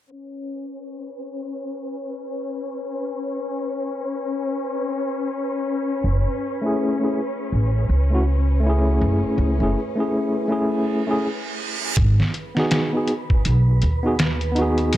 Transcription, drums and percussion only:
11.97 kick loud
11.97 closed hi-hat medium
12.20 snare soft
12.34 closed hi-hat medium
12.57 snare soft
12.71 snare loud
12.71 closed hi-hat medium
13.08 closed hi-hat medium
13.30 kick medium
13.45 closed hi-hat medium
13.82 closed hi-hat medium
14.19 snare loud
14.19 closed hi-hat medium
14.41 closed hi-hat soft
14.56 closed hi-hat medium
14.78 closed hi-hat soft
14.93 closed hi-hat medium

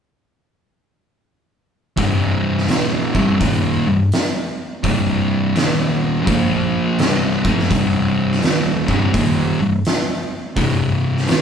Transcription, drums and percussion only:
1.97 kick loud
1.97 open hi-hat soft
2.58 snare soft
2.69 snare loud
2.69 open hi-hat medium
3.15 kick loud
3.41 kick loud
3.41 open hi-hat medium
4.12 snare loud
4.12 open hi-hat medium
4.84 kick loud
4.84 open hi-hat soft
5.56 snare loud
5.56 open hi-hat medium
6.27 kick loud
6.27 open hi-hat soft
6.99 snare loud
6.99 open hi-hat soft
7.45 kick loud
7.59 snare soft
7.71 kick loud
7.71 open hi-hat soft
8.32 snare soft
8.43 snare loud
8.43 open hi-hat medium
8.88 kick medium
9.14 kick loud
9.14 open hi-hat medium
9.85 snare loud
9.85 open hi-hat medium
10.57 kick loud
10.57 open hi-hat medium
11.17 snare soft
11.28 snare loud
11.28 open hi-hat medium

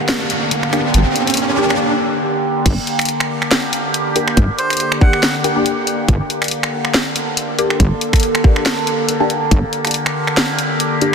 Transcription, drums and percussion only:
0.09 snare loud
0.09 closed hi-hat medium
0.30 closed hi-hat medium
0.51 closed hi-hat medium
0.63 finger snap medium
0.73 finger snap soft
0.73 closed hi-hat medium
0.94 closed hi-hat medium
1.16 closed hi-hat medium
1.27 closed hi-hat soft
1.30 closed hi-hat medium
1.34 closed hi-hat medium
1.37 closed hi-hat medium
1.70 finger snap medium
2.66 kick loud
2.66 closed hi-hat medium
2.66 crash loud
2.87 closed hi-hat medium
2.99 finger snap medium
2.99 closed hi-hat medium
3.01 closed hi-hat medium
3.05 closed hi-hat medium
3.09 closed hi-hat medium
3.20 finger snap medium
3.42 finger snap medium
3.51 snare loud
3.51 closed hi-hat medium
3.73 closed hi-hat medium
3.94 closed hi-hat medium
4.16 closed hi-hat medium
4.28 finger snap medium
4.37 kick loud
4.37 closed hi-hat medium
4.59 closed hi-hat medium
4.70 finger snap medium
4.70 closed hi-hat medium
4.73 closed hi-hat medium
4.77 closed hi-hat medium
4.80 closed hi-hat medium
4.92 finger snap medium
5.01 kick loud
5.13 finger snap medium
5.23 snare loud
5.23 closed hi-hat medium
5.44 closed hi-hat medium
5.66 closed hi-hat medium
5.87 closed hi-hat medium
6.08 kick loud
6.08 closed hi-hat medium
6.30 closed hi-hat medium
6.42 finger snap medium
6.42 closed hi-hat soft
6.44 closed hi-hat medium
6.48 closed hi-hat medium
6.51 closed hi-hat medium
6.63 finger snap medium
6.85 finger snap medium
6.94 snare loud
6.94 closed hi-hat medium
7.16 closed hi-hat medium
7.37 closed hi-hat medium
7.59 closed hi-hat medium
7.70 finger snap medium
7.80 kick loud
7.80 closed hi-hat medium
8.01 closed hi-hat medium
8.13 finger snap medium
8.13 kick medium
8.13 closed hi-hat soft
8.16 closed hi-hat medium
8.20 closed hi-hat medium
8.23 closed hi-hat medium
8.35 finger snap medium
8.44 kick loud
8.56 finger snap medium
8.66 snare loud
8.66 closed hi-hat medium
8.87 closed hi-hat medium
9.09 closed hi-hat medium
9.30 closed hi-hat medium
9.51 kick loud
9.51 closed hi-hat medium
9.73 closed hi-hat medium
9.85 finger snap medium
9.85 closed hi-hat soft
9.87 closed hi-hat medium
9.91 closed hi-hat medium
9.94 closed hi-hat medium
10.06 finger snap medium
10.27 finger snap medium
10.37 snare loud
10.37 closed hi-hat medium
10.59 closed hi-hat medium
10.80 closed hi-hat medium
11.01 closed hi-hat soft

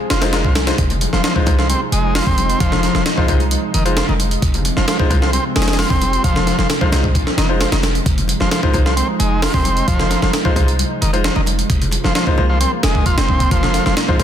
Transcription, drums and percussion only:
0.10 snare loud
0.10 closed hi-hat medium
0.22 snare loud
0.22 closed hi-hat medium
0.33 snare loud
0.33 closed hi-hat medium
0.45 kick medium
0.55 snare loud
0.55 closed hi-hat medium
0.55 high conga medium
0.67 snare loud
0.67 closed hi-hat medium
0.78 kick loud
0.78 closed hi-hat medium
0.90 closed hi-hat soft
0.90 low conga medium
1.01 closed hi-hat medium
1.01 muted conga medium
1.13 snare soft
1.13 high conga medium
1.24 snare loud
1.24 closed hi-hat medium
1.36 kick medium
1.46 kick medium
1.46 closed hi-hat medium
1.46 muted conga medium
1.46 low conga medium
1.59 snare soft
1.69 closed hi-hat medium
1.69 high conga medium
1.92 closed hi-hat medium
2.15 snare loud
2.15 open hi-hat medium
2.27 kick medium
2.38 closed hi-hat medium
2.38 high conga medium
2.50 closed hi-hat soft
2.60 kick loud
2.60 closed hi-hat medium
2.72 snare medium
2.72 low conga medium
2.83 snare soft
2.83 closed hi-hat medium
2.95 snare soft
2.95 high conga medium
3.06 snare loud
3.06 closed hi-hat medium
3.18 kick medium
3.28 kick medium
3.28 closed hi-hat medium
3.28 muted conga medium
3.28 low conga medium
3.40 closed hi-hat soft
3.51 closed hi-hat medium
3.51 high conga medium
3.74 closed hi-hat medium
3.86 closed hi-hat soft
3.97 snare loud
3.97 closed hi-hat medium
4.09 muted conga medium
4.19 closed hi-hat medium
4.19 high conga medium
4.31 closed hi-hat soft
4.42 kick loud
4.42 closed hi-hat medium
4.54 closed hi-hat soft
4.54 low conga medium
4.65 closed hi-hat medium
4.65 muted conga medium
4.77 snare soft
4.77 high conga medium
4.88 snare loud
4.88 closed hi-hat medium
5.00 kick loud
5.10 kick medium
5.10 closed hi-hat medium
5.10 muted conga medium
5.10 low conga medium
5.22 snare soft
5.33 closed hi-hat medium
5.33 high conga medium
5.56 snare medium
5.56 closed hi-hat medium
5.62 snare medium
5.62 closed hi-hat medium
5.68 snare medium
5.68 closed hi-hat medium
5.73 snare medium
5.73 closed hi-hat medium
5.79 snare loud
5.79 open hi-hat medium
5.90 kick medium
6.02 closed hi-hat medium
6.02 high conga medium
6.13 closed hi-hat soft
6.24 kick loud
6.24 closed hi-hat medium
6.36 snare medium
6.36 low conga medium
6.47 snare soft
6.47 closed hi-hat medium
6.59 snare soft
6.59 high conga medium
6.70 snare loud
6.70 closed hi-hat medium
6.81 kick medium
6.92 snare loud
6.92 closed hi-hat medium
6.92 muted conga medium
6.92 low conga medium
7.04 kick medium
7.15 kick medium
7.15 closed hi-hat medium
7.15 high conga medium
7.27 snare soft
7.38 snare loud
7.38 closed hi-hat medium
7.61 snare loud
7.61 closed hi-hat medium
7.72 snare loud
7.72 closed hi-hat medium
7.72 muted conga soft
7.83 snare medium
7.83 closed hi-hat medium
7.83 high conga medium
7.95 closed hi-hat soft
8.06 kick loud
8.06 closed hi-hat medium
8.18 closed hi-hat soft
8.18 low conga medium
8.28 closed hi-hat medium
8.28 muted conga medium
8.40 snare soft
8.40 high conga medium
8.51 snare loud
8.51 closed hi-hat medium
8.63 kick medium
8.73 kick medium
8.73 closed hi-hat medium
8.73 muted conga medium
8.73 low conga medium
8.86 snare soft
8.97 closed hi-hat medium
8.97 high conga medium
9.20 closed hi-hat medium
9.42 snare loud
9.42 open hi-hat medium
9.54 kick medium
9.65 closed hi-hat medium
9.65 high conga loud
9.77 closed hi-hat soft
9.88 kick loud
9.88 closed hi-hat medium
10.00 snare medium
10.00 low conga medium
10.11 snare soft
10.11 closed hi-hat medium
10.22 snare soft
10.22 high conga medium
10.33 snare loud
10.33 closed hi-hat medium
10.45 kick medium
10.56 kick medium
10.56 closed hi-hat medium
10.56 muted conga medium
10.56 low conga medium
10.68 closed hi-hat soft
10.79 closed hi-hat medium
10.79 high conga medium
11.02 closed hi-hat medium
11.14 closed hi-hat soft
11.24 snare loud
11.24 closed hi-hat medium
11.36 muted conga medium
11.46 closed hi-hat medium
11.46 high conga medium
11.59 closed hi-hat soft
11.70 kick loud
11.70 closed hi-hat medium
11.82 closed hi-hat soft
11.82 low conga medium
11.91 closed hi-hat medium
11.91 muted conga medium
12.04 snare soft
12.04 high conga medium
12.15 snare loud
12.15 closed hi-hat medium
12.27 kick medium
12.38 muted conga medium
12.38 low conga medium
12.60 closed hi-hat medium
12.60 high conga medium
12.83 snare loud
12.83 closed hi-hat medium
12.95 kick medium
13.06 kick medium
13.06 closed hi-hat medium
13.18 snare loud
13.18 closed hi-hat medium
13.28 kick medium
13.28 high conga medium
13.40 kick medium
13.40 closed hi-hat medium
13.51 kick loud
13.51 closed hi-hat medium
13.63 snare medium
13.63 low conga medium
13.74 snare soft
13.74 closed hi-hat medium
13.86 snare soft
13.86 high conga medium
13.97 snare loud
13.97 closed hi-hat medium
14.09 kick loud
14.19 kick medium
14.19 closed hi-hat medium
14.19 muted conga medium
14.19 low conga medium

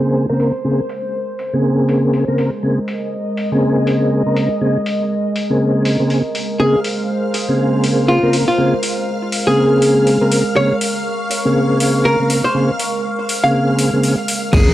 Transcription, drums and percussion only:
0.40 open hi-hat medium
0.89 open hi-hat loud
1.39 open hi-hat medium
1.89 open hi-hat loud
2.13 open hi-hat medium
2.38 open hi-hat loud
2.88 open hi-hat loud
3.37 open hi-hat loud
3.87 open hi-hat loud
4.37 open hi-hat loud
4.86 open hi-hat loud
5.36 open hi-hat loud
5.85 open hi-hat loud
6.10 open hi-hat medium
6.35 open hi-hat medium
6.84 open hi-hat loud
7.34 open hi-hat loud
7.84 open hi-hat loud
8.33 open hi-hat medium
8.83 open hi-hat loud
9.32 open hi-hat medium
9.82 open hi-hat loud
10.07 open hi-hat medium
10.32 open hi-hat loud
10.81 open hi-hat loud
11.31 open hi-hat medium
11.80 open hi-hat loud
12.30 open hi-hat medium
12.79 open hi-hat medium
13.29 open hi-hat medium
13.79 open hi-hat loud
14.03 open hi-hat medium
14.28 open hi-hat medium
14.53 kick loud
14.53 closed hi-hat medium
14.53 crash loud
14.53 tambourine soft

